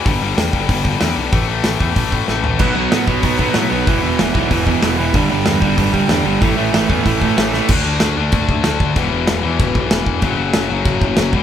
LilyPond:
<<
  \new Staff \with { instrumentName = "Overdriven electric guitar" } { \clef bass \time 4/4 \key a \lydian \tempo 4 = 189 r1 | r1 | <b, fis b>8 <b, fis b>8 <b, fis b>8 <b, fis b>8 <b, fis b>8 <b, fis b>8 <b, fis b>8 <b, fis b>8 | <e, b, e>8 <e, b, e>8 <e, b, e>8 <e, b, e>8 <e, b, e>8 <e, b, e>8 <e, b, e>8 <e, b, e>8 |
<g, d g>8 <g, d g>8 <g, d g>8 <g, d g>8 <g, d g>8 <g, d g>8 <g, d g>8 <g, d g>8 | <a, e a>8 <a, e a>8 <a, e a>8 <a, e a>8 <a, e a>8 <a, e a>8 <a, e a>8 <a, e a>8 | \key d \lydian r1 | r1 |
r1 | }
  \new Staff \with { instrumentName = "Distorted electric guitar" } { \clef bass \time 4/4 \key a \lydian <g, d g>8 <g, d g>8 <g, d g>8 <g, d g>8 <g, d g>8 <g, d g>8 <g, d g>8 <g, d g>8 | <a, e a>8 <a, e a>8 <a, e a>8 <a, e a>8 <a, e a>8 <a, e a>8 <a, e a>8 <a, e a>8 | <b, fis b>8 <b, fis b>8 <b, fis b>8 <b, fis b>8 <b, fis b>8 <b, fis b>8 <b, fis b>8 <b, fis b>8 | <e, b, e>8 <e, b, e>8 <e, b, e>8 <e, b, e>8 <e, b, e>8 <e, b, e>8 <e, b, e>8 <e, b, e>8 |
<g, d g>8 <g, d g>8 <g, d g>8 <g, d g>8 <g, d g>8 <g, d g>8 <g, d g>8 <g, d g>8 | <a, e a>8 <a, e a>8 <a, e a>8 <a, e a>8 <a, e a>8 <a, e a>8 <a, e a>8 <a, e a>8 | \key d \lydian <d a d'>4. <d a d'>2~ <d a d'>8 | <e, b, e>4. <e, b, e>2~ <e, b, e>8 |
<fis, cis fis>4. <fis, cis fis>2 <e, b, e>8 | }
  \new Staff \with { instrumentName = "Picked electric bass" } { \clef bass \time 4/4 \key a \lydian g,,8 g,,8 e,8 g,,8 g,,4 e,8 b,,8 | a,,8 a,,8 a,,8 e,8 a,,4 a,,4 | b,,8 b,,8 a,8 b,,8 b,,4 a,8 b,,8 | e,,8 e,,8 e,,8 b,,8 e,,4 e,,4 |
g,,8 g,,8 e,8 g,,8 g,,4 e,8 g,,8 | a,,8 a,,8 a,,8 e,8 a,,4 a,,4 | \key d \lydian d,8 d,8 d,8 d,8 d,8 d,8 d,8 d,8 | e,,8 e,,8 e,,8 e,8 e,,8 b,,8 e,,8 e,,8 |
fis,,8 fis,,8 fis,,8 fis,,8 fis,,8 fis,,8 fis,,8 e,,8 | }
  \new DrumStaff \with { instrumentName = "Drums" } \drummode { \time 4/4 <hho bd>4 <hho sn>8 bd8 <hho bd>8 bd8 <hho sn>4 | <hho bd>4 <hho sn>8 bd8 <hho bd>8 bd8 sn8 tomfh8 | <cymc bd>4 <hho sn>8 bd8 <hho bd>8 bd8 <hho sn>4 | <hho bd>4 <hho sn>8 bd8 <hho bd>8 bd8 <hho sn>4 |
<hho bd>4 <hho sn>8 bd8 <hho bd>8 bd8 <hho sn>4 | <hho bd>4 <hho sn>8 bd8 <hho bd>8 bd8 <hho sn>8 sn8 | <cymc bd>4 <cymc sn>4 <cymc bd>8 bd8 <cymc sn>8 bd8 | <cymc bd>4 <cymc sn>4 <cymc bd>8 bd8 <cymc sn>8 bd8 |
<cymc bd>4 <cymc sn>4 <cymc bd>8 bd8 <cymc sn>8 bd8 | }
>>